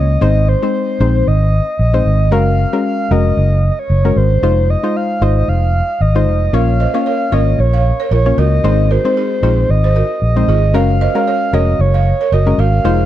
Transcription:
Already playing: fingered electric bass C#2, soft synth lead D#5
0.21 fingered electric bass G#1, synth pluck G#3 C4 D#4 C5, soft synth lead D#5
0.48 soft synth lead C5
0.62 synth pluck G#3 C4 D#4 C5
1.00 fingered electric bass A#1, synth pluck G#3 C4 D#4 C5
1.27 fingered electric bass G#1, soft synth lead D#5
1.79 fingered electric bass A#1, soft synth lead D#5
1.93 synth pluck G#3 C4 D#4 C5
2.05 fingered electric bass G#1
2.31 fingered electric bass F#1, synth pluck G#3 C#4 F#4 A#4, soft synth lead F5
2.73 synth pluck G#3 C#4 F#4 A#4
2.86 soft synth lead F5
3.11 fingered electric bass F1, synth pluck G#3 C#4 F#4 A#4, soft synth lead D#5
3.37 fingered electric bass F#1
3.71 soft synth lead D#5
3.79 soft synth lead C#5
3.90 fingered electric bass F#1
4.05 synth pluck G#3 C#4 F#4 A#4
4.16 fingered electric bass G#1, soft synth lead C5
4.43 fingered electric bass F1, synth pluck G#3 D#4 F4 C5
4.70 soft synth lead D#5
4.83 synth pluck G#3 D#4 F4 C5
4.96 soft synth lead F5
5.21 fingered electric bass G#1, synth pluck G#3 D#4 F4 C5, soft synth lead D#5
5.37 soft synth lead D#5
5.48 fingered electric bass F1, soft synth lead F5
6.01 fingered electric bass G#1, soft synth lead D#5
6.15 synth pluck G#3 D#4 F4 C5
6.27 fingered electric bass F1
6.53 fingered electric bass A#1, synth pluck A#3 C#4 F4 C#5, balafon A#4 C#5, soft synth lead F5
6.80 balafon C5 D#5
6.94 synth pluck A#3 C#4 F4 C#5, balafon C#5 F5
7.06 balafon A#4 C#5, soft synth lead F5
7.32 fingered electric bass G#1, synth pluck A#3 C#4 F4 C#5, balafon A#4 C#5, soft synth lead D#5
7.58 fingered electric bass A#1, soft synth lead C#5
7.73 balafon C#5 F5
8.00 balafon A#4 C#5
8.11 fingered electric bass A#1, balafon F4 A#4, soft synth lead C#5
8.26 synth pluck A#3 C#4 F4 C#5
8.37 fingered electric bass C#2, balafon F#4 A#4, soft synth lead D#5
8.64 fingered electric bass G#1, synth pluck G#3 C4 D#4 C5, balafon D#4 G#4
8.91 balafon F#4 A#4, soft synth lead C5
9.04 synth pluck G#3 C4 D#4 C5, balafon G#4 C5
9.17 balafon D#4 G#4
9.43 fingered electric bass A#1, synth pluck G#3 C4 D#4 C5, balafon F4 G#4
9.69 fingered electric bass G#1, soft synth lead D#5
9.84 balafon G#4 C5
9.96 balafon F#4 A#4
10.22 fingered electric bass A#1, soft synth lead D#5
10.36 synth pluck G#3 C4 D#4 C5
10.48 fingered electric bass G#1, balafon F4 G#4
10.74 fingered electric bass F#1, synth pluck G#3 C#4 F#4 A#4, balafon A#4 C#5, soft synth lead F5
11.01 balafon C5 D#5
11.15 synth pluck G#3 C#4 F#4 A#4, balafon C#5 F5
11.28 balafon A#4 C#5, soft synth lead F5
11.53 fingered electric bass F1, synth pluck G#3 C#4 F#4 A#4, balafon A#4 C#5, soft synth lead D#5
11.79 fingered electric bass F#1, soft synth lead C#5
11.94 balafon C#5 F5
12.21 balafon A#4 C#5
12.32 fingered electric bass F#1, balafon F#4 A#4, soft synth lead D#5
12.46 synth pluck G#3 C#4 F#4 A#4
12.58 fingered electric bass G#1, balafon F#4 A#4, soft synth lead F5
12.84 fingered electric bass F1, synth pluck G#3 D#4 F4 C5, balafon F4 G#4

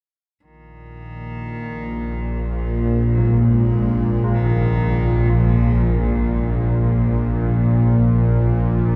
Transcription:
0.41 synth drone A#1 A#2, cello D#3
2.40 cello F3
3.14 church bells G#2, cello F#3
3.37 cello G#3
4.24 church bells F4
4.34 cello D#3
5.29 cello F3

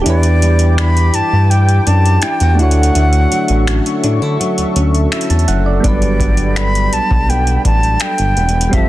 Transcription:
Already playing: nylon-string guitar A3 E4 G4
0.02 nylon-string guitar E3, synth keys D4 G4
0.06 analog synth bass E2, synth keys E4, analog synth pad G4 G5 D6, flute D5, closed hi-hat
0.10 synth keys B4
0.23 closed hi-hat
0.42 nylon-string guitar G3, closed hi-hat
0.59 closed hi-hat
0.78 nylon-string guitar D4, flute B5, finger snap, closed hi-hat
0.97 closed hi-hat
1.14 analog synth bass G2, flute A5, closed hi-hat
1.33 analog synth bass G2
1.50 flute G5, closed hi-hat
1.69 closed hi-hat
1.86 analog synth bass F#2, nylon-string guitar D4, flute A5, closed hi-hat
2.06 closed hi-hat
2.22 nylon-string guitar E4, flute G5, finger snap, closed hi-hat
2.40 analog synth bass E2, nylon-string guitar F#4, closed hi-hat
2.55 nylon-string guitar D3, synth keys A3 D4, analog synth pad F#4 A4 E5
2.59 analog synth bass D2, synth keys E4 F#4, flute F#5, analog synth pad C#6, closed hi-hat
2.63 synth keys C#5
2.71 closed hi-hat
2.83 closed hi-hat
2.95 analog synth bass D2, nylon-string guitar D3, closed hi-hat
3.13 closed hi-hat
3.31 nylon-string guitar F#3, closed hi-hat
3.48 analog synth bass A1, closed hi-hat
3.67 nylon-string guitar C#4, finger snap, closed hi-hat
3.86 closed hi-hat
4.04 analog synth bass A2, nylon-string guitar D4, closed hi-hat
4.22 analog synth bass D3, nylon-string guitar E4
4.40 nylon-string guitar F#3, closed hi-hat
4.58 analog synth bass D2, closed hi-hat
4.76 analog synth bass D2, nylon-string guitar C#4, closed hi-hat
4.95 closed hi-hat
5.12 nylon-string guitar E4, synth keys E5, finger snap, closed hi-hat
5.21 closed hi-hat
5.30 analog synth bass E2, synth keys A5, closed hi-hat
5.39 closed hi-hat
5.48 analog synth bass F#1, nylon-string guitar F#3, synth keys F#5, closed hi-hat
5.66 synth keys D5
5.80 analog synth bass G1, synth keys G3 B3 D4, kick, closed hi-hat
5.84 synth keys F#3 B4, nylon-string guitar G3, flute D5, analog synth pad D5 G5 B5
6.02 closed hi-hat
6.20 nylon-string guitar B3, kick, closed hi-hat
6.37 closed hi-hat
6.56 nylon-string guitar D4, flute B5, finger snap, closed hi-hat
6.75 closed hi-hat
6.93 analog synth bass B1, flute A5, closed hi-hat
7.11 analog synth bass B1, kick
7.29 nylon-string guitar B3, flute G5, closed hi-hat
7.47 closed hi-hat
7.65 analog synth bass A1, nylon-string guitar D4, flute A5, kick, closed hi-hat
7.83 closed hi-hat
8.00 flute G5, finger snap, closed hi-hat
8.18 analog synth bass G1, closed hi-hat
8.37 analog synth bass E1, nylon-string guitar B3, closed hi-hat
8.49 closed hi-hat
8.61 closed hi-hat
8.69 analog synth bass F1, analog synth pad F3 G5, nylon-string guitar F3, synth keys G3 C4, kick, closed hi-hat
8.73 synth keys F4 G4, flute E5, analog synth pad A5
8.77 synth keys A4

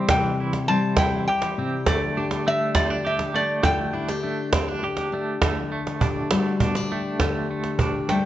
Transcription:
Already playing: steel-string acoustic guitar G3 E4, clean electric guitar C4 E4 G4, resonator guitar played with a steel bar E5
0.09 steel-string acoustic guitar C3, clean electric guitar E3, resonator guitar played with a steel bar G5, cajon bass, cajon slap
0.40 clean electric guitar E4
0.53 cajon slap
0.68 steel-string acoustic guitar G3, clean electric guitar C4, resonator guitar played with a steel bar A5, cajon slap
0.97 steel-string acoustic guitar E4, clean electric guitar E4, resonator guitar played with a steel bar G5, cajon bass, cajon slap
1.28 clean electric guitar G4, resonator guitar played with a steel bar G5
1.42 cajon slap
1.57 steel-string acoustic guitar C3, clean electric guitar C4, cajon slap
1.86 steel-string acoustic guitar D3, clean electric guitar A3, resonator guitar played with a steel bar D5, cajon bass, cajon slap
2.17 clean electric guitar D4, steel-string acoustic guitar G4
2.31 cajon slap
2.46 clean electric guitar A3, steel-string acoustic guitar D4, resonator guitar played with a steel bar E5, cajon slap
2.75 clean electric guitar C4, steel-string acoustic guitar G4, resonator guitar played with a steel bar D5, cajon bass, cajon slap
2.90 clean electric guitar D4
3.05 clean electric guitar G4, steel-string acoustic guitar G4, resonator guitar played with a steel bar E5
3.19 cajon slap
3.34 clean electric guitar A3, steel-string acoustic guitar D4, resonator guitar played with a steel bar D5, cajon slap
3.63 steel-string acoustic guitar D3, clean electric guitar A3, resonator guitar played with a steel bar G5, cajon bass, cajon slap
3.79 cajon slap
3.93 clean electric guitar D4, steel-string acoustic guitar E4
4.09 steel-string acoustic guitar G4, cajon slap
4.23 clean electric guitar A3, steel-string acoustic guitar D4
4.53 clean electric guitar C4, steel-string acoustic guitar G4, cajon bass, cajon slap
4.68 clean electric guitar D4
4.83 steel-string acoustic guitar G4, clean electric guitar G4
4.97 cajon slap
5.12 clean electric guitar A3, steel-string acoustic guitar D4
5.41 steel-string acoustic guitar D3, clean electric guitar A3, cajon bass, cajon slap
5.72 clean electric guitar A3
5.87 cajon slap
6.01 clean electric guitar D4, steel-string acoustic guitar G4, cajon bass
6.31 steel-string acoustic guitar G3 F#4, clean electric guitar A3, cajon slap
6.60 steel-string acoustic guitar B3, clean electric guitar D4, cajon bass
6.75 steel-string acoustic guitar D4, cajon slap
6.92 clean electric guitar A3, steel-string acoustic guitar G4
7.20 steel-string acoustic guitar D3, clean electric guitar A3, cajon bass, cajon slap
7.51 clean electric guitar A3
7.64 cajon slap
7.79 clean electric guitar D4, steel-string acoustic guitar G4, cajon bass
8.09 steel-string acoustic guitar G3, clean electric guitar A3, resonator guitar played with a steel bar G5, cajon slap

